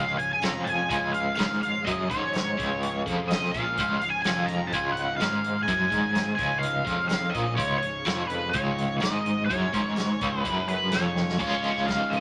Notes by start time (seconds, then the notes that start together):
Already playing: C#1 C#2 F3 G#3 C#4 F4 G#4 F5
0.17 C#1 C#2 G#5, closed hi-hat
0.33 G#5
0.41 F1 F2 A#5, snare, closed hi-hat, tambourine
0.65 G#5, closed hi-hat
0.90 C#1 C#2 G#5, kick, closed hi-hat
1.13 F5, closed hi-hat
1.35 G#1 G#2 F5, closed hi-hat, tambourine
1.40 snare
1.52 snare
1.61 F5, closed hi-hat
1.85 F#1 F#2 D#5, kick, closed hi-hat
2.10 G#1 G#2 C#5, kick, closed hi-hat
2.33 snare, closed hi-hat, tambourine
2.58 C#1 C#2, kick, closed hi-hat
2.83 closed hi-hat
3.06 F1 F2, kick, closed hi-hat
3.28 D#5, snare, closed hi-hat, tambourine
3.44 snare
3.51 A#1 A#2 F5, kick, closed hi-hat
3.77 C#1 C#2 D#4, kick, closed hi-hat
3.97 C#1 F5
4.01 C#2, closed hi-hat
4.10 G#5
4.22 F1 G#5, snare, closed hi-hat, tambourine
4.27 F2
4.46 A#5, closed hi-hat
4.67 G#5
4.72 C#1 C#2, kick, closed hi-hat
4.92 F#5
4.97 closed hi-hat
5.16 G#1 F5, tambourine
5.21 G#2, snare, closed hi-hat
5.44 closed hi-hat
5.63 G#5
5.68 F#1 F#2, kick, closed hi-hat
5.91 G#1 G#2, kick, closed hi-hat
6.15 snare, closed hi-hat, tambourine
6.35 C#1 C#2 G#5, kick, closed hi-hat
6.59 F5, closed hi-hat
6.86 F1 F2, kick, closed hi-hat
7.08 F5, snare, closed hi-hat, tambourine
7.30 D#5
7.34 A#1 A#2, kick, closed hi-hat
7.55 C#1 C#2 C#5, kick
7.59 closed hi-hat
7.78 C#5
7.83 C#1 C#2, closed hi-hat
8.05 F1 F2, snare, closed hi-hat, tambourine
8.27 B4, closed hi-hat
8.49 C#5, closed hi-hat
8.54 C#1 C#2, kick
8.78 closed hi-hat
8.98 G#1 G#2 D#5, tambourine
9.02 snare, closed hi-hat
9.26 closed hi-hat
9.46 C#5
9.50 F#1 F#2, kick, closed hi-hat
9.73 G#1 G#2, kick, closed hi-hat
9.96 snare, closed hi-hat, tambourine
10.21 C#1 C#2, kick, closed hi-hat
10.40 F#1 B4
10.45 F#2, kick, closed hi-hat
10.68 B4, closed hi-hat
10.91 F1 F2 C#5, snare, closed hi-hat, tambourine
11.16 snare
11.29 snare
11.39 C#1 C#2 G#2 C#3 F3 G#3 C#4 F4 G#4 C#5, kick, closed hi-hat
11.43 F4
11.64 closed hi-hat
11.75 C#1, snare
11.86 F5, kick, snare, closed hi-hat
12.10 C#1 D#5, closed hi-hat